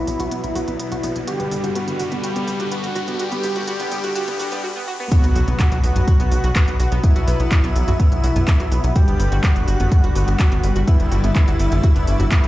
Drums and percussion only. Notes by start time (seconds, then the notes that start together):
0.07 open hi-hat
0.20 closed hi-hat
0.31 closed hi-hat
0.44 closed hi-hat
0.55 open hi-hat
0.68 closed hi-hat
0.80 closed hi-hat
0.92 closed hi-hat
1.03 open hi-hat
1.16 closed hi-hat
1.28 closed hi-hat
1.40 closed hi-hat
1.51 open hi-hat
1.64 closed hi-hat
1.75 closed hi-hat
1.88 closed hi-hat
1.99 open hi-hat
2.12 closed hi-hat
2.24 closed hi-hat
2.36 closed hi-hat
2.48 open hi-hat
2.60 closed hi-hat
2.72 closed hi-hat
2.84 closed hi-hat
2.95 open hi-hat
3.08 closed hi-hat
3.19 closed hi-hat
3.32 closed hi-hat
3.43 open hi-hat
3.56 closed hi-hat
3.67 closed hi-hat
3.80 closed hi-hat
3.91 open hi-hat
4.04 closed hi-hat
4.15 closed hi-hat
4.28 closed hi-hat
4.39 open hi-hat
4.52 closed hi-hat
5.12 kick, closed hi-hat
5.24 closed hi-hat
5.36 open hi-hat
5.48 closed hi-hat
5.60 kick, clap, closed hi-hat
5.72 closed hi-hat
5.84 open hi-hat
5.96 closed hi-hat, mid tom
6.08 kick, closed hi-hat
6.20 closed hi-hat
6.32 open hi-hat
6.44 closed hi-hat
6.56 kick, clap, closed hi-hat
6.68 closed hi-hat
6.80 open hi-hat
6.92 closed hi-hat
7.04 kick, closed hi-hat
7.16 closed hi-hat
7.28 open hi-hat
7.40 closed hi-hat
7.52 kick, clap, closed hi-hat
7.64 closed hi-hat
7.76 open hi-hat
7.88 closed hi-hat, mid tom
8.00 kick, closed hi-hat
8.12 closed hi-hat
8.24 open hi-hat
8.36 closed hi-hat, mid tom
8.48 kick, clap, closed hi-hat
8.60 closed hi-hat
8.72 open hi-hat
8.84 closed hi-hat
8.96 kick, closed hi-hat
9.08 closed hi-hat
9.20 open hi-hat
9.32 closed hi-hat
9.44 kick, clap, closed hi-hat
9.56 closed hi-hat
9.68 open hi-hat
9.80 closed hi-hat, mid tom
9.92 kick, closed hi-hat
10.04 closed hi-hat
10.16 open hi-hat
10.28 closed hi-hat
10.40 kick, clap, closed hi-hat
10.52 closed hi-hat
10.64 open hi-hat
10.76 closed hi-hat
10.88 kick, closed hi-hat
11.00 closed hi-hat
11.12 open hi-hat
11.24 closed hi-hat
11.36 kick, clap, closed hi-hat
11.48 closed hi-hat
11.59 open hi-hat
11.72 closed hi-hat, mid tom
11.84 kick, closed hi-hat
11.96 closed hi-hat, mid tom
12.07 open hi-hat
12.20 closed hi-hat, mid tom
12.31 kick, clap, closed hi-hat
12.44 closed hi-hat